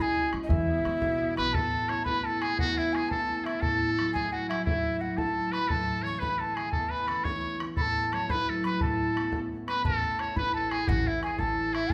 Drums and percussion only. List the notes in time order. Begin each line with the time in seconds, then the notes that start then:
0.17 bodhran
0.33 bodhran
0.49 bodhran
0.85 bodhran
1.02 bodhran
1.11 bodhran
1.21 bodhran
1.37 bodhran
1.54 bodhran
1.89 bodhran
2.06 bodhran
2.42 bodhran
2.59 bodhran
2.95 bodhran
3.11 bodhran
3.46 bodhran
3.63 bodhran
3.99 bodhran
4.16 bodhran
4.51 bodhran
4.67 bodhran
5.18 bodhran
5.53 bodhran
5.70 bodhran
6.22 bodhran
6.57 bodhran
6.73 bodhran
7.08 bodhran
7.25 bodhran
7.60 bodhran
7.77 bodhran
8.13 bodhran
8.30 bodhran
8.64 bodhran
8.81 bodhran
9.17 bodhran
9.32 bodhran
9.68 bodhran
9.85 bodhran
10.19 bodhran
10.37 bodhran
10.71 bodhran
10.87 bodhran
11.23 bodhran
11.39 bodhran
11.75 bodhran
11.90 bodhran